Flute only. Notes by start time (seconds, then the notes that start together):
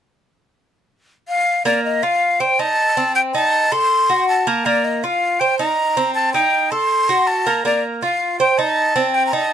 1.28 F5
1.65 D5
1.84 D#5
2.03 F5
2.40 G5
2.59 A5
3.15 G5
3.34 A5
3.72 C6
4.29 A5
4.65 D5
4.84 D#5
5.03 F5
5.40 G5
5.58 A#5
6.15 A5
6.33 G5
6.71 C6
7.27 A5
7.65 D5
8.02 F5
8.39 G5
8.58 A5
9.14 G5
9.26 A#5
9.33 A5